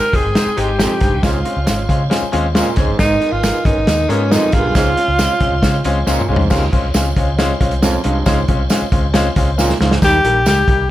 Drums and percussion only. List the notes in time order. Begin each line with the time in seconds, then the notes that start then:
0.13 kick, closed hi-hat
0.35 snare, closed hi-hat, tambourine
0.58 closed hi-hat
0.80 snare, closed hi-hat, tambourine
1.01 kick, snare, closed hi-hat
1.23 kick, snare, closed hi-hat, tambourine
1.45 closed hi-hat
1.67 snare, closed hi-hat, tambourine
1.89 kick, closed hi-hat
2.11 snare, closed hi-hat, tambourine
2.33 closed hi-hat
2.55 snare, closed hi-hat, tambourine
2.76 kick, snare, closed hi-hat
2.99 kick, snare, closed hi-hat, tambourine
3.22 closed hi-hat
3.43 snare, closed hi-hat, tambourine
3.65 kick, closed hi-hat
3.87 snare, closed hi-hat, tambourine
4.10 closed hi-hat
4.32 snare, closed hi-hat, tambourine
4.52 kick, snare, closed hi-hat
4.75 kick, snare, closed hi-hat, tambourine
4.97 closed hi-hat
5.19 snare, closed hi-hat, tambourine
5.40 kick, closed hi-hat
5.63 kick, snare, closed hi-hat, tambourine
5.84 closed hi-hat
6.07 snare, tambourine
6.21 mid tom
6.36 floor tom
6.50 kick, snare, crash, tambourine
6.73 kick, closed hi-hat
6.94 snare, closed hi-hat, tambourine
7.16 kick, closed hi-hat
7.39 snare, closed hi-hat, tambourine
7.61 kick, closed hi-hat
7.71 closed hi-hat
7.83 snare, closed hi-hat, tambourine
8.04 closed hi-hat
8.26 kick, snare, closed hi-hat, tambourine
8.48 kick, closed hi-hat
8.70 snare, closed hi-hat, tambourine
8.92 kick, closed hi-hat
9.14 snare, closed hi-hat, tambourine
9.36 kick, closed hi-hat
9.59 snare, tambourine
9.70 snare
9.81 snare
9.91 snare
10.02 kick, snare, closed hi-hat, tambourine
10.25 closed hi-hat
10.46 snare, closed hi-hat, tambourine
10.68 kick, closed hi-hat